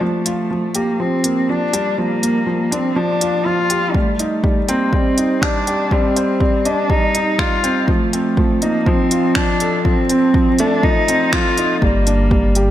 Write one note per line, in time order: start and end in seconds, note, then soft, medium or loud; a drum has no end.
0.01 0.25 F3 medium
0.01 0.76 A3 medium
0.26 0.49 F4 medium
0.26 closed hi-hat medium
0.51 0.74 F3 medium
0.75 1.01 A#3 medium
0.75 0.99 G4 medium
0.75 closed hi-hat medium
1.00 1.14 F3 medium
1.00 1.51 C4 medium
1.24 1.48 A#3 medium
1.24 closed hi-hat medium
1.49 1.63 F3 medium
1.49 2.00 D4 loud
1.73 1.97 G3 medium
1.73 closed hi-hat medium
1.98 2.22 F3 medium
1.98 2.73 A#3 loud
2.22 2.46 A#3 medium
2.22 closed hi-hat medium
2.47 2.70 F3 medium
2.71 2.97 C4 medium
2.71 2.86 D4 medium
2.71 closed hi-hat medium
2.95 3.20 F3 medium
2.95 3.47 D4 loud
3.21 3.45 F4 medium
3.21 closed hi-hat medium
3.45 3.69 F3 medium
3.45 3.97 F4 loud
3.70 3.94 G4 medium
3.70 closed hi-hat medium
3.94 4.09 G3 medium
3.94 4.70 A3 medium
3.94 kick medium
4.19 4.43 D#4 medium
4.19 closed hi-hat medium
4.44 4.58 G3 medium
4.44 kick loud
4.68 4.95 A#3 medium
4.68 4.92 C4 loud
4.68 closed hi-hat medium
4.93 5.17 G3 medium
4.93 5.44 C4 medium
4.93 kick medium
5.18 5.42 D#4 medium
5.18 closed hi-hat medium
5.42 5.66 G3 medium
5.42 5.93 D4 loud
5.42 finger snap medium
5.42 kick medium
5.67 5.81 G4 medium
5.67 closed hi-hat medium
5.91 6.15 G3 medium
5.91 6.67 C4 medium
5.91 kick medium
6.16 6.40 C5 medium
6.16 closed hi-hat medium
6.40 6.65 G3 medium
6.40 kick loud
6.65 6.92 D4 medium
6.65 6.89 D#5 medium
6.65 closed hi-hat medium
6.90 7.05 G3 medium
6.90 7.41 D#4 loud
6.90 kick medium
7.15 7.39 D#4 medium
7.15 closed hi-hat medium
7.39 7.54 G3 medium
7.39 7.90 F4 loud
7.39 finger snap medium
7.39 kick medium
7.64 7.87 C4 medium
7.64 closed hi-hat medium
7.88 8.12 F3 medium
7.88 8.63 A3 loud
7.88 kick medium
8.13 8.37 C4 medium
8.13 closed hi-hat medium
8.37 8.61 F3 medium
8.37 kick loud
8.62 8.88 A#3 medium
8.62 8.76 D#4 medium
8.62 closed hi-hat medium
8.86 9.10 F3 loud
8.86 9.38 C4 loud
8.86 kick loud
9.11 9.35 F4 medium
9.11 closed hi-hat medium
9.35 9.60 F3 medium
9.35 9.85 D4 loud
9.35 finger snap medium
9.35 kick loud
9.60 9.84 A4 medium
9.60 closed hi-hat medium
9.85 9.99 F3 medium
9.85 10.61 C4 loud
9.85 kick loud
10.09 10.33 C4 medium
10.09 closed hi-hat medium
10.34 10.49 F3 medium
10.34 kick loud
10.59 10.83 A3 loud
10.59 10.85 D4 medium
10.59 closed hi-hat medium
10.83 11.07 F3 medium
10.83 11.34 D#4 loud
10.83 kick loud
11.08 11.32 C4 medium
11.08 closed hi-hat medium
11.33 11.57 F3 medium
11.33 11.81 F4 loud
11.33 finger snap medium
11.33 kick loud
11.58 11.72 D#4 medium
11.58 closed hi-hat medium
11.82 12.71 G1 medium
11.82 12.06 G3 medium
11.82 12.71 A#3 medium
11.82 kick loud
12.07 12.30 D4 medium
12.07 closed hi-hat medium
12.31 12.55 G3 medium
12.31 kick loud
12.55 12.70 G4 medium
12.55 closed hi-hat medium